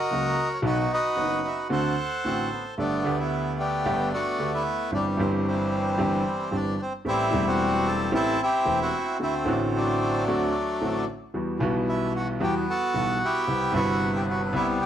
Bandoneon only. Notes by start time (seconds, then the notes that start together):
Already playing: F#4 A#4 D#5
0.54 C#5
0.65 D#4 F#4 B4
0.93 F#4 B4 D#5
1.47 E5
1.72 A4 C5 F#5
2.26 C4
2.53 B3
2.79 A3 B3 D4
3.20 A3 B3 E4
3.60 B3 D4 G4
4.14 A3 B3 F#4
4.54 A3 B3 E4
4.94 G3 D4
5.20 C4
5.47 E3 G3 C4
6.55 D4
6.82 C4
7.08 G3 C4 E4
7.47 C4 F#4
7.87 A4
8.15 C4 E4 A4
8.43 C4 E4 G4
8.81 C4 F#4
9.22 A3 C4 E4
9.50 D4
9.76 F#3 A3 D4
11.89 E4
12.16 F#4
12.43 B3 G4
12.70 F#4 A4
13.25 B3 E4 G4
13.76 B3 F#4
14.16 G4
14.30 F#4
14.55 G3 B3 E4
14.82 G4